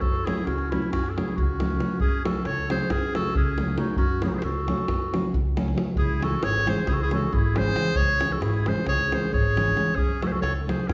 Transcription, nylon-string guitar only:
0.26 C#3 F#3 A3 C#4
0.72 C#3 F#3 A3 C#4
1.16 C#3 F#3 A3 C#4
1.60 C#3 F#3 A3 C#4
1.79 C#3 F#3 A3 C#4
2.24 C#3 F#3 A3 C#4
2.69 C#3 F#3 A3 C#4
3.14 C#3 F#3 A3 C#4
3.59 C#3 F#3 A3 C#4
3.78 C#3 F#3 A3 C#4
4.22 C#3 F#3 A3 C#4
4.67 C#3 F#3 A3 C#4
5.13 C#3 F#3 A3 C#4
5.56 C#3 F#3 A3 C#4
5.75 C#3 F#3 A3 C#4
6.19 C#3 E3 G#3 C#4
6.65 C#3 E3 G#3 C#4
7.12 C#3 E3 G#3 C#4
7.55 C#3 E3 G#3 C#4
7.74 C#3 E3 G#3 C#4
8.20 C#3 E3 G#3 C#4
8.66 C#3 E3 G#3 C#4
9.11 C#3 E3 G#3 C#4
9.56 C#3 E3 G#3 C#4
9.76 C#3 E3 G#3 C#4
10.21 C#3 F#3 A3 C#4
10.67 C#3 F#3 A3 C#4

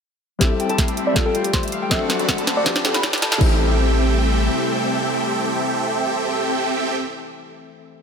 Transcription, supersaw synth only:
0.41 C4 G4 A4 E5 G5
0.69 C4 G4 A4 E5 B5
1.16 C4 F4 A4 E5 G5
1.91 C4 F#4 A4 D5 F#5
2.19 C4 F#4 A4 D5 B5
2.66 F4 G4 D5 G5
3.41 C4 G4 A4 E5 G5

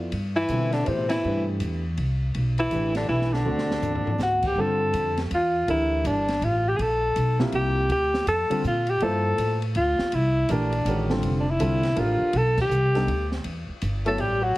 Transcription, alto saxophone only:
0.36 E4
0.74 D4
0.88 C4
1.10 E4
2.60 E4
2.97 D4
3.09 E4
3.33 D4
4.22 F#4
4.47 G4
4.60 A4
5.34 F4
5.70 E4
6.07 D4
6.44 F4
6.68 G4
6.76 G#4
6.81 A4
7.55 G4
7.91 G4
8.28 A4
8.67 F4
8.90 G4
9.03 A4
9.77 F4
10.14 E4
10.52 D4
11.40 D4
11.50 E4
11.99 F4
12.37 A4
12.62 G4
14.07 A4
14.20 G4
14.43 F#4

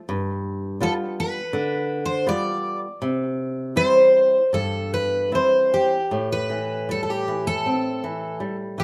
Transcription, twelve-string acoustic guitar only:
0.83 A4
1.20 B4
2.06 C5
2.29 D5
3.77 C5
4.54 A4
4.94 B4
5.35 C5
5.74 G4
6.32 B4
6.91 A4
7.03 A4
7.10 G4
7.47 A4
8.80 G4

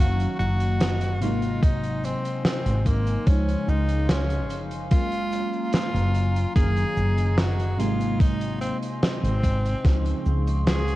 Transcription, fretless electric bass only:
0.00 F#1
0.40 F#1
1.22 G#1
2.66 G#1
3.27 C#2
3.68 C#2
4.50 F#1
5.94 F#1
6.56 F#1
6.97 F#1
7.79 G#1
9.23 G#1
9.84 C#2
10.26 C#2

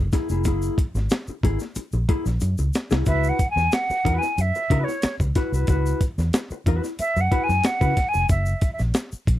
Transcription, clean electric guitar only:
0.13 A#3 E4 G#4
0.31 A#3 E4 G#4
0.46 A#3 E4 G#4
0.96 muted clean electric guitar stroke
1.11 muted clean electric guitar stroke
1.29 muted clean electric guitar stroke
1.43 A#3 E4 G#4
1.61 muted clean electric guitar stroke
1.76 muted clean electric guitar stroke
1.94 muted clean electric guitar stroke
2.09 A#3 E4 G#4
2.26 muted clean electric guitar stroke
2.41 muted clean electric guitar stroke
2.59 muted clean electric guitar stroke
2.91 A#3 E4 G#4
3.07 E4 F#4 B4
3.57 muted clean electric guitar stroke
3.72 muted clean electric guitar stroke
3.91 muted clean electric guitar stroke
4.05 E4 F#4 B4
4.23 muted clean electric guitar stroke
4.38 muted clean electric guitar stroke
4.56 muted clean electric guitar stroke
4.71 E4 F#4 B4
4.88 muted clean electric guitar stroke
5.03 muted clean electric guitar stroke
5.21 muted clean electric guitar stroke
5.36 E4 F#4 B4
5.54 E4 F#4 B4
5.69 E4 F#4 B4
6.20 muted clean electric guitar stroke
6.35 muted clean electric guitar stroke
6.52 muted clean electric guitar stroke
6.67 E4 F#4 B4
6.84 muted clean electric guitar stroke
6.99 muted clean electric guitar stroke
7.17 muted clean electric guitar stroke
7.32 E4 F#4 B4
7.49 muted clean electric guitar stroke
7.64 muted clean electric guitar stroke
7.81 E4 F#4 B4
7.96 muted clean electric guitar stroke
8.14 muted clean electric guitar stroke

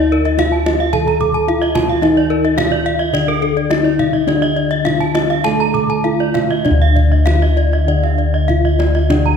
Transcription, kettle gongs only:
Already playing: D2 D#4
0.38 D#4
0.93 D#3
1.48 D#4
2.02 D#4
2.57 D#4
3.13 D3
3.70 D#4
4.27 D4
4.85 D#4
5.45 D3
6.05 D#4
6.66 D4
6.71 D2
7.27 D#4
8.49 D#4
9.10 D4

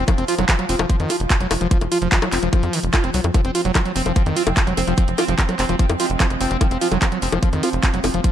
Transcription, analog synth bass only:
0.18 F1
0.39 F1
0.69 F1
0.79 F1
1.00 F2
1.20 F1
1.41 F1
1.51 F1
1.61 F1
1.81 F1
2.02 F1
2.32 F1
2.43 F1
2.63 F2
2.83 F1
3.04 F1
3.14 C2
3.24 F2
3.45 F1
3.65 F1
3.96 F1
4.06 F1
4.26 F2
4.47 F1
4.67 F1
4.77 F1
4.87 F1
5.08 F1
5.28 F1
5.59 F1
5.69 F1
5.90 F2
6.10 F1
6.30 F1
6.41 F1
6.51 F1
6.71 F1
6.92 F1
7.22 F1
7.32 F1
7.53 F2
7.73 F1
7.94 F1
8.04 F1
8.14 F1

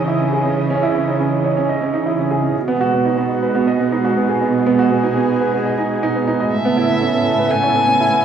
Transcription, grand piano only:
Already playing: C#4 D#4 E4 C#5 D#5
0.08 E4
0.20 C#4
0.33 G#4
0.45 C#4
0.70 C#4
0.83 E4
0.95 C#4
1.08 D#4
1.20 C#4
1.44 C#5
1.57 C#4
1.69 D#5
1.81 C#4
1.93 D#4
2.06 E4
2.19 C#4
2.31 G#4
2.43 C#4
2.68 B3
2.81 F#4
2.93 B3
3.05 D#4
3.18 B3
3.42 B4
3.55 B3
3.67 D#5
3.80 B3
3.92 D#4
4.05 F#4
4.17 B3
4.29 G#4
4.41 B3
4.66 B3
4.79 F#4
4.91 B3
5.03 D#4
5.16 B3
5.41 B4
5.53 B3
5.65 D#5
5.78 D#4
6.03 D#4
6.15 B3
6.27 D#4
6.40 D#5
6.65 B3
6.77 E4
6.89 B3
7.02 C#4
7.14 B3
7.39 B4
7.51 B3
7.63 C#5
7.76 B3
7.88 C#4
8.01 E4
8.13 B3

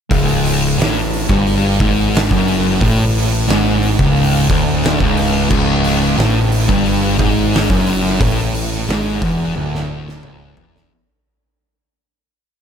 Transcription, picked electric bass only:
0.11 C#1
0.78 A1
1.30 G1
1.80 G#1
2.31 F#1
2.81 A1
3.47 G#1
3.99 C#1
4.50 D1
5.00 C#1
5.51 C#1
6.18 A1
6.69 G1
7.19 G#1
7.70 F#1
8.20 A1
8.87 G#1
9.22 E1
9.56 D1
10.23 C#1
10.56 E1

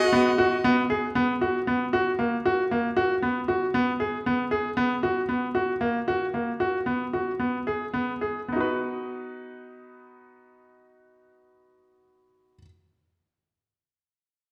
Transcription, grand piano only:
0.13 B3
0.38 F#4
0.64 B3
0.90 G#4
1.15 B3
1.41 F#4
1.67 B3
1.93 F#4
2.19 A#3
2.46 F#4
2.71 A#3
2.97 F#4
3.22 B3
3.48 F#4
3.74 B3
4.00 G#4
4.26 B3
4.51 G#4
4.77 B3
5.03 F#4
5.29 B3
5.55 F#4
5.81 A#3
6.08 F#4
6.34 A#3
6.60 F#4
6.86 B3
7.13 F#4
7.39 B3
7.67 G#4
7.94 B3
8.21 G#4
8.48 B3 D#4
8.56 F#4
8.60 B4

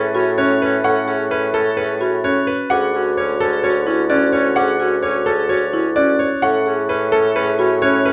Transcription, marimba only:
Already playing: G#4
0.15 F#4
0.38 C#4
0.84 A4
1.08 G#4
1.54 A4
1.77 G#4
2.01 F#4
2.24 C#4
2.70 G#4
2.94 F#4
3.40 G#4
3.64 F#4
3.87 E4
4.10 C#4
4.57 G#4
4.80 F#4
5.26 G#4
5.50 F#4
5.73 E4
5.96 C#4
6.43 A4
6.66 G#4
7.13 A4
7.36 G#4
7.59 F#4
7.82 C#4

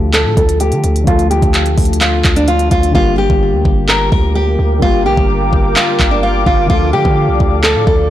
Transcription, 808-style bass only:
Already playing: D2
0.25 A2
0.37 D2
0.72 D3
0.84 D2
1.07 D2
1.42 D2
1.78 D2
2.25 D2
2.71 D2
2.95 G1
3.30 G1
3.53 D2
3.65 G1
4.12 D2
4.59 D2
4.82 G1
5.06 A#1
5.17 G1
5.53 G1
6.00 G1
6.46 G1
6.70 D2
6.93 D3
7.05 D3
7.28 C2
7.40 D2
7.75 A2
7.87 D2

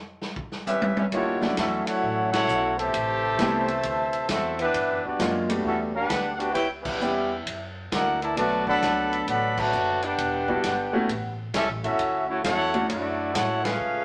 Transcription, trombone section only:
0.66 G3 C#4 E4
0.96 G3 C#4 E4
1.11 F#3 A3 C#4
1.42 F#3 A3 D4
1.58 A3 C#4 E4
1.87 A3 C#4 F#4
2.33 A3 C#4 F#4
2.79 C3 E3 A3
4.30 A3 C4 E4
4.59 E3 B3 E4
5.05 G3 B3 D4
5.64 E4
5.93 B3 D4 G4
6.37 B3 D4 G4
6.52 B3 E4 G4
6.82 G3 B3 E4
7.92 A#3 D4 F#4
8.22 D3 E3 A3
8.38 D3 F#3 A3
8.67 F#3 B3 D4
9.28 D3 F#3 B3
9.57 D3 F#3 A3
10.02 B3 D4 G4
11.53 G3 C#4 E4
11.83 A3 C#4 E4
12.27 F#3 A3 C#4
12.42 A3 C#4 F#4
12.87 F#3 A3 D4
13.32 A3 C#4 F#4
13.62 G#3 A3 F4

